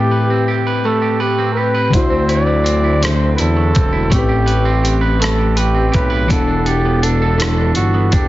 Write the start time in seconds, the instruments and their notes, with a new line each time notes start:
Already playing: fm electric piano A2 A3 C4 G4 B4, clean electric guitar E3 A3 G4 B4, flugelhorn G4
0.11 clean electric guitar B4
0.30 clean electric guitar C4
0.48 clean electric guitar G4
0.67 clean electric guitar B4
0.85 clean electric guitar A3, flugelhorn A4
1.02 clean electric guitar G4
1.20 flugelhorn G4, clean electric guitar B4
1.38 clean electric guitar C4
1.53 flugelhorn A#4
1.57 clean electric guitar G4, flugelhorn B4
1.74 clean electric guitar B4
1.90 fm electric piano D3 A3, clean electric guitar D3, kick, closed hi-hat
1.94 analog synth bass D2, fm electric piano E4 F#4, flugelhorn C5
1.99 fm electric piano C5
2.10 clean electric guitar C4
2.28 clean electric guitar E4, flugelhorn D5, closed hi-hat
2.46 clean electric guitar F#3
2.64 clean electric guitar C4, closed hi-hat
2.84 clean electric guitar E4
3.02 clean electric guitar D3, flugelhorn C5, cross-stick, closed hi-hat
3.20 clean electric guitar C4
3.35 clean electric guitar E4, flugelhorn B4, closed hi-hat
3.40 analog synth bass E2, flugelhorn A4
3.56 clean electric guitar F#3
3.74 analog synth bass E1, clean electric guitar C4, kick, closed hi-hat
3.93 clean electric guitar E4
4.09 analog synth bass A1, fm electric piano A2 A3, clean electric guitar A3, flugelhorn G4, kick, closed hi-hat
4.14 fm electric piano C4 G4
4.18 fm electric piano B4
4.29 clean electric guitar G4
4.46 clean electric guitar B4, closed hi-hat
4.65 clean electric guitar C4
4.83 clean electric guitar G4, closed hi-hat
5.01 clean electric guitar B4
5.20 clean electric guitar A3, flugelhorn A4, closed hi-hat
5.24 cross-stick
5.38 clean electric guitar G4
5.57 flugelhorn G4, clean electric guitar B4, closed hi-hat
5.75 clean electric guitar C4
5.92 analog synth bass B1, clean electric guitar G4, flugelhorn B4, kick, closed hi-hat
6.10 clean electric guitar B4
6.27 analog synth bass E1, fm electric piano E3 B3, clean electric guitar E3, flugelhorn A4, kick, closed hi-hat
6.31 fm electric piano D4 F#5
6.36 fm electric piano A4
6.47 clean electric guitar D4
6.66 flugelhorn G4, clean electric guitar A4, closed hi-hat
6.85 clean electric guitar B3
7.02 clean electric guitar D4, flugelhorn A4, closed hi-hat
7.22 clean electric guitar A4
7.38 clean electric guitar E3, closed hi-hat
7.42 cross-stick
7.58 clean electric guitar D4
7.75 analog synth bass G1, flugelhorn F#4, clean electric guitar A4, closed hi-hat
7.94 clean electric guitar B3
8.11 analog synth bass E1, clean electric guitar D4, flugelhorn G4, kick, closed hi-hat